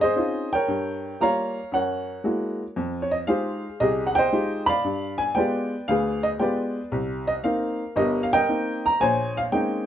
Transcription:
0.01 G#4 C5 D#5
0.16 C4 C#4 D#4 F4
0.53 A#4 C#5 G5
0.68 G2
1.20 G3 A#3 F4 C#5 F5 A#5
1.72 F#2 A#4 C#5 F#5
2.24 G#3 A#3 E4 F#4
2.76 F2
3.02 C#5
3.11 D#5
3.27 G#3 D#4 F4 G4 G#4 C5 F5
3.80 C2 G4 G#4 D#5
4.07 F#5
4.15 C5 D#5 G5
4.33 G#3 D#4 F4 G4
4.66 D5 F5 B5
4.84 G2
5.18 G#5
5.35 G#3 B3 F4 G4 B4 D5 G5
5.88 D2 G#4 B4 F5
6.23 D#5
6.39 G#3 B3 F4 G4 B4 D5 G5
6.92 C2
7.27 D#5
7.44 A#3 C4 D#4 A#4 F5
7.96 G1 G2 G4 A#4 D#5
8.23 F5
8.33 A#4 D#5 G5
8.48 A#3 C4 D#4
8.86 A#5
9.00 A#1 C5 C#5 G#5
9.37 F5
9.52 G#3 A#3 C4 C#4 D#4 G5

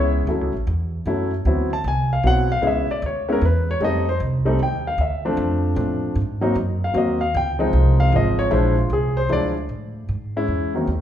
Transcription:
Already playing: C#2 G#3 B3 C#4 E4
0.27 D2 F#3 A3 C#4 E4
0.41 C#2
0.54 A1
0.67 E2
1.05 F#2 F#3 A3 C#4 E4
1.45 D2 F#3 B3 C4 E4
1.73 A5
1.84 C2 G#5
2.13 F5
2.23 B1 F#3 B3 C4 E4 F#5
2.52 F5
2.62 C#2 G#3 B3 C#4 E4 D#5
2.67 E5
2.89 D5, muted upright bass stroke
3.02 D2
3.06 C#5
3.28 G#3 B3 C#4 E4
3.32 A#4
3.41 E2 B4
3.71 C#5
3.80 F2 G3 A3 C4 D#4
3.85 D#5
4.09 C5
4.20 C2
4.45 G3 A3 C4 D#4
4.59 D#2 G5
4.87 F5
4.98 D2 E5
5.25 F3 A3 C4 D4
5.37 F2
5.76 A2 F3 A3 C4 D4
6.15 G#2
6.41 F#3 A#3 C4 D#4
6.55 F#2
6.84 F5
6.94 D#2 F#3 A#3 C4 F#4
6.98 D#5
7.21 F5
7.34 C#2 G5
7.59 F3 G#3 C4 D#4
7.73 C2
8.00 F5
8.12 G#1 F3 G#3 C4 F4 D#5
8.39 C#5
8.51 A#1 F3 G#3 D4 E4 C5
8.77 F4
8.90 C2 G#4
9.17 C5
9.29 D2 F3 G#3 D4 E4 D5
9.69 A2
10.09 G#2
10.36 G#3 C#4 E4
10.48 E2
10.75 D#3 F#3 A#3 C4 D#4
10.87 D#2

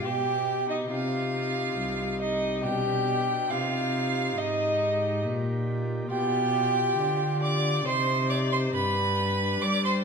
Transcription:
Already playing: G4
0.04 B2 G4 G5
0.69 D#4 D#5
0.89 C3 D#4 F4 G4 F5
1.78 C2
2.21 D#4 D#5
2.62 B2 D4 G4 G5
3.48 C3 D#4 F4 G4 F5
4.38 G#2 D#4 D#5
5.25 A#2
6.08 B2 F4 G4 G5
6.98 D3
7.43 D5 D6
7.84 C3 D#4 G4 C5 C6
8.30 D5 D6
8.52 C5 C6
8.72 G2 D4 G4 B4 B5
9.62 G3 D5 D6
9.85 C5 C6

